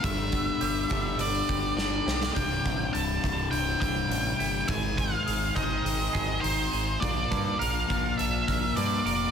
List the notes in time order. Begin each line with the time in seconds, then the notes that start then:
0.01 G1 G2 D3 G3 E5, kick, open hi-hat
0.32 B3, kick, open hi-hat
0.61 G1 G4, open hi-hat
0.90 G1 G2 D3 G3 D4, kick, open hi-hat
1.18 G1 B3 D5, open hi-hat
1.49 G1 G4, kick, open hi-hat
1.76 G1 D4 D5, snare
2.06 B1 G4, snare
2.23 snare
2.33 C1 C2 G2 C3 G5, kick, open hi-hat
2.65 A1 C3, kick, open hi-hat
2.93 C1 E4 A5, open hi-hat
3.22 C1 C2 G2 C3 G3, kick, open hi-hat
3.51 C1 C3 G5, open hi-hat
3.81 C1 E4 G5, kick, open hi-hat
4.09 A1 G3, open hi-hat
4.39 G1 E4, open hi-hat
4.66 G#1 G#2 D#3 G#3 G#5, kick, open hi-hat
4.97 C4 F5, kick, open hi-hat
5.26 G#1 G#4, open hi-hat
5.54 G#1 G#2 D#3 G#3 D#4 D#5, kick, open hi-hat
5.85 G#1 C4, open hi-hat
6.13 G#1 G#4, kick, open hi-hat
6.41 G#1 D#4 C5, open hi-hat
6.72 G#1 G#4, open hi-hat
7.00 A#1 A#2 F3 A#3 D5, kick, open hi-hat
7.31 G2 D4, kick, open hi-hat
7.59 A#1 A#4 F5, open hi-hat
7.88 A#1 A#2 F3 A#3 F4, kick, open hi-hat
8.18 A#1 D4 E5, open hi-hat
8.47 A#1 A#4, kick, open hi-hat
8.76 G2 F4 D5, open hi-hat
9.05 F1 A#4 D5, open hi-hat